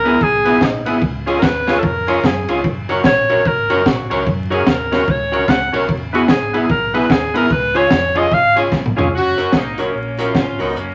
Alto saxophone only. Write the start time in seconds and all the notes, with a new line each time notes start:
Already playing: A#4
0.22 G#4
0.65 D#4
1.39 A#4
1.44 B4
1.79 A4
1.84 A#4
2.25 G#4
3.06 C#5
3.47 A#4
3.88 F#4
4.54 G#4
4.70 A#4
5.10 C#5
5.49 F#5
6.15 F#4
6.30 G#4
6.70 A#4
6.95 B4
7.11 G#4
7.37 A#4
7.52 B4
7.76 C#5
8.18 D#5
8.33 F5